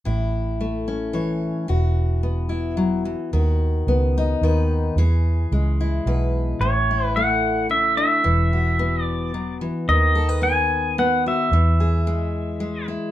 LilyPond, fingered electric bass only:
\new Staff \with { instrumentName = "Fingered electric bass" } { \clef bass \time 3/4 \key a \major \tempo 4 = 110 a,,2. | e,,2. | dis,4 cis,4 dis,4 | e,4 cis,4 b,,4 |
a,,2. | e,,2. | dis,2. | e,2. | }